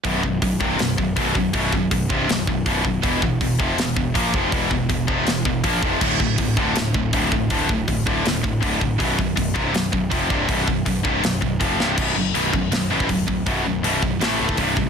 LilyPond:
<<
  \new Staff \with { instrumentName = "Distorted electric guitar" } { \clef bass \time 4/4 \key b \minor \tempo 4 = 161 <b,, fis, b,>8 <b,, fis,>8 <b,, fis,>8 <c, g, c>8 <b,, fis,>8 <b,, fis,>8 <b,, fis, b,>8 <b,, fis,>8 | <b,, fis, b,>8 <b,, fis,>8 <b,, fis,>8 <c, g, c>8 <b,, fis,>8 <b,, fis,>8 <b,, fis, b,>8 <b,, fis,>8 | <e, b, e>8 <e, b,>8 <e, b,>8 <eis, c eis>8 <e, b,>8 <e, b,>8 <ais, eis ais>8 <eis, c eis>8 | <e, b, e>8 <e, b,>8 <e, b,>8 <eis, c eis>8 <e, b,>8 <e, b,>8 <ais, eis ais>8 <eis, c eis>8 |
<d, a, d>8 <d, a,>8 <d, a,>8 <d, a, d>8 <d, a,>8 <d, a,>8 <d, a, d>8 <d, a,>8 | <d, a, d>8 <d, a,>8 <d, a,>8 <d, a, d>8 <d, a,>8 <d, a,>8 <d, a, d>8 <d, a,>8 | <b,, fis, b,>8 <b,, fis,>8 <b,, fis,>8 <c, g, c>8 <b,, fis,>8 <b,, fis,>8 <eis, c eis>8 <c, g, c>8 | <b,, fis, b,>8 <b,, fis,>8 <b,, fis,>8 <c, g, c>8 <b,, fis,>8 <b,, fis,>8 <eis, c eis>8 <c, g, c>8 |
<b,, fis, b,>8 <b,, fis,>8 <b,, fis, b,>8 <b,, fis,>8 <b,, fis,>8 <b,, fis, b,>8 <b,, fis,>8 <b,, fis,>8 | <b,, fis, b,>8 <b,, fis,>8 <b,, fis, b,>8 <b,, fis,>8 <a, e a>8 <a, e a>8 <c, g, c>8 <c, g,>8 | }
  \new Staff \with { instrumentName = "Distorted electric guitar" } { \clef bass \time 4/4 \key b \minor <b,, fis, b,>8 <b,, fis,>8 <b,, fis,>8 <c, g, c>8 <b,, fis,>8 <b,, fis,>8 <b,, fis, b,>8 <b,, fis,>8 | <b,, fis, b,>8 <b,, fis,>8 <b,, fis,>8 <c, g, c>8 <b,, fis,>8 <b,, fis,>8 <b,, fis, b,>8 <b,, fis,>8 | <e, b, e>8 <e, b,>8 <e, b,>8 <eis, c eis>8 <e, b,>8 <e, b,>8 <ais, eis ais>8 <eis, c eis>8 | <e, b, e>8 <e, b,>8 <e, b,>8 <eis, c eis>8 <e, b,>8 <e, b,>8 <ais, eis ais>8 <eis, c eis>8 |
<d, a, d>8 <d, a,>8 <d, a,>8 <d, a, d>8 <d, a,>8 <d, a,>8 <d, a, d>8 <d, a,>8 | <d, a, d>8 <d, a,>8 <d, a,>8 <d, a, d>8 <d, a,>8 <d, a,>8 <d, a, d>8 <d, a,>8 | <b,, fis, b,>8 <b,, fis,>8 <b,, fis,>8 <c, g, c>8 <b,, fis,>8 <b,, fis,>8 <eis, c eis>8 <c, g, c>8 | <b,, fis, b,>8 <b,, fis,>8 <b,, fis,>8 <c, g, c>8 <b,, fis,>8 <b,, fis,>8 <eis, c eis>8 <c, g, c>8 |
<b,, fis, b,>8 <b,, fis,>8 <b,, fis, b,>8 <b,, fis,>8 <b,, fis,>8 <b,, fis, b,>8 <b,, fis,>8 <b,, fis,>8 | <b,, fis, b,>8 <b,, fis,>8 <b,, fis, b,>8 <b,, fis,>8 <a, e a>8 <a, e a>8 <c, g, c>8 <c, g,>8 | }
  \new Staff \with { instrumentName = "Picked electric bass" } { \clef bass \time 4/4 \key b \minor b,,,8 b,,,8 b,,,8 c,,8 b,,,8 b,,,8 b,,,8 b,,,8 | b,,,8 b,,,8 b,,,8 c,,8 b,,,8 b,,,8 b,,,8 b,,,8 | e,,8 e,,8 e,,8 eis,,8 e,,8 e,,8 ais,,8 eis,,8 | e,,8 e,,8 e,,8 eis,,8 e,,8 e,,8 ais,,8 eis,,8 |
d,,8 d,,8 d,,8 d,,8 d,,8 d,,8 d,,8 d,,8 | d,,8 d,,8 d,,8 d,,8 d,,8 d,,8 d,,8 d,,8 | b,,,8 b,,,8 b,,,8 c,,8 b,,,8 b,,,8 eis,,8 c,,8 | b,,,8 b,,,8 b,,,8 c,,8 b,,,8 b,,,8 eis,,8 c,,8 |
b,,,8 fis,,8 b,,,8 b,,,8 b,,,8 a,,8 d,,4 | b,,,8 b,,,8 b,,,8 b,,,8 a,,8 cis,,8 c,,8 a,,8 | }
  \new DrumStaff \with { instrumentName = "Drums" } \drummode { \time 4/4 <hho bd>8 bd8 <hho bd>8 bd8 <hho sn>8 bd8 <hho bd>8 bd8 | <hho bd>8 bd8 <hho bd>8 bd8 <hho sn>8 bd8 <hho bd>8 bd8 | <hho bd>8 bd8 <hho bd>8 bd8 <hho sn>8 bd8 <hho bd>8 bd8 | <hho bd>8 bd8 <hho bd>8 bd8 <hho sn>8 bd8 <hho bd>8 bd8 |
<cymc bd>8 bd8 <hho bd>8 bd8 <hho sn>8 bd8 <hho bd>8 bd8 | <hho bd>8 bd8 <hho bd>8 bd8 <hho sn>8 bd8 <hho bd>8 bd8 | <hho bd>8 bd8 <hho bd>8 bd8 <hho sn>8 bd8 <hho bd>8 bd8 | <hho bd>8 bd8 <hho bd>8 bd8 <hho sn>8 bd8 <hho bd>8 sn8 |
<cymc bd>4 hho8 bd8 <hho sn>8. bd16 <hho bd>8 bd8 | <hho bd>4 hho8 bd8 <hho sn>8. bd16 <hho bd>8 bd8 | }
>>